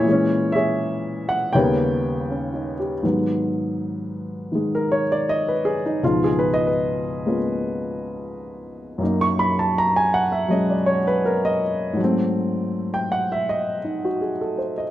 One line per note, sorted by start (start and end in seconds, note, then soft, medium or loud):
0.00 1.52 A#2 medium
0.00 1.27 E4 medium
0.00 0.54 G#4 medium
0.00 0.55 C#5 medium
0.04 1.54 E3 medium
0.04 1.55 G#3 medium
0.11 1.57 C#4 medium
0.52 1.50 G#4 medium
0.52 1.51 C#5 medium
0.52 1.24 E5 medium
1.29 1.34 F#5 medium
1.53 3.03 D#2 medium
1.53 3.04 C#3 medium
1.53 3.04 G3 medium
1.53 3.03 B3 medium
1.53 3.00 A#4 medium
1.53 3.00 C#5 medium
1.53 2.74 G5 medium
2.30 2.76 C#4 soft
2.53 2.92 D#4 soft
2.79 3.18 G4 medium
3.03 6.02 G#2 medium
3.03 4.50 D#3 soft
3.03 6.02 F#3 soft
3.03 6.03 B3 soft
4.52 6.02 D#3 soft
4.52 6.03 G#3 medium
4.75 5.01 A#4 medium
4.92 5.09 C#5 medium
5.12 5.25 D5 medium
5.29 5.53 D#5 medium
5.48 5.75 B4 medium
5.65 5.83 G#4 medium
5.86 6.00 D#4 medium
6.03 9.01 C#2 soft
6.03 9.01 G#2 soft
6.03 9.02 B2 soft
6.03 9.01 F3 soft
6.03 9.01 D#4 medium
6.03 6.27 F4 medium
6.24 6.50 G#4 medium
6.39 6.45 B4 medium
6.54 6.69 D#5 medium
6.67 7.38 B4 medium
7.26 9.01 G#3 soft
7.26 9.00 A#3 soft
7.26 9.01 B3 soft
7.26 9.01 C#4 soft
7.26 9.01 F4 soft
8.98 11.98 F#2 medium
8.98 10.47 F#3 medium
8.98 11.99 A#3 medium
9.03 12.00 D#4 medium
9.21 9.48 C#6 medium
9.39 9.57 B5 medium
9.59 9.73 A5 medium
9.78 10.01 A#5 medium
9.96 10.23 G#5 medium
10.14 10.31 F#5 medium
10.32 10.47 E5 medium
10.48 11.95 F#3 medium
10.48 11.99 G#3 soft
10.48 12.00 C#4 soft
10.48 10.75 D#5 medium
10.70 10.97 D5 medium
10.86 11.05 C#5 medium
11.07 11.22 B4 medium
11.26 11.49 A#4 medium
11.45 11.61 D#5 medium
11.93 14.91 G#2 medium
11.93 14.91 F#3 soft
12.00 14.91 A3 medium
12.00 14.91 C4 medium
12.94 13.20 G5 medium
13.12 13.29 F#5 medium
13.32 13.46 E5 medium
13.49 13.79 D#5 medium
13.84 14.08 D#4 soft
14.05 14.30 F#4 soft
14.21 14.57 G#4 soft
14.41 14.73 A4 soft
14.58 14.82 C5 soft
14.78 14.91 D#5 medium